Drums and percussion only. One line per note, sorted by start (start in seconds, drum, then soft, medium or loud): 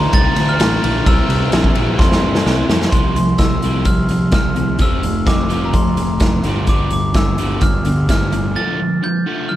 0.13 kick loud
0.13 ride loud
0.36 ride medium
0.60 snare loud
0.60 ride loud
0.84 ride medium
1.06 kick loud
1.06 ride loud
1.30 ride medium
1.52 snare loud
1.52 ride medium
1.64 kick medium
1.75 ride medium
1.99 kick loud
1.99 snare medium
2.12 snare medium
2.35 snare medium
2.46 snare medium
2.70 snare loud
2.82 snare loud
2.92 kick loud
2.92 closed hi-hat medium
3.16 closed hi-hat medium
3.38 kick loud
3.38 snare medium
3.38 closed hi-hat medium
3.62 closed hi-hat medium
3.85 kick medium
3.85 closed hi-hat medium
4.09 closed hi-hat medium
4.32 kick loud
4.32 snare loud
4.32 closed hi-hat medium
4.56 closed hi-hat medium
4.79 kick medium
4.79 closed hi-hat medium
5.03 closed hi-hat medium
5.27 kick loud
5.27 snare loud
5.27 closed hi-hat medium
5.50 closed hi-hat medium
5.73 kick medium
5.73 closed hi-hat medium
5.97 closed hi-hat soft
6.20 kick loud
6.20 snare loud
6.20 closed hi-hat medium
6.44 snare soft
6.44 closed hi-hat medium
6.67 kick loud
6.67 closed hi-hat medium
6.90 closed hi-hat soft
7.14 kick loud
7.14 snare medium
7.14 closed hi-hat medium
7.38 closed hi-hat medium
7.61 kick loud
7.61 closed hi-hat medium
7.85 closed hi-hat medium
8.09 kick loud
8.09 snare loud
8.09 closed hi-hat medium
8.32 closed hi-hat medium